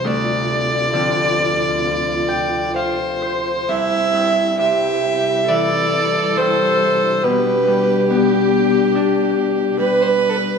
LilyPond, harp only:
<<
  \new Staff \with { instrumentName = "Harp" } { \time 4/4 \key c \major \tempo 4 = 68 r2 r8 g''8 f''8 c''8 | r1 | r1 | }
  \new Staff \with { instrumentName = "Harp" } { \clef bass \time 4/4 \key c \major d,4 <d f c'>2. | c,8 g,8 c4 e4 g,4 | b,8 g8 b4 d'4 g4 | }
>>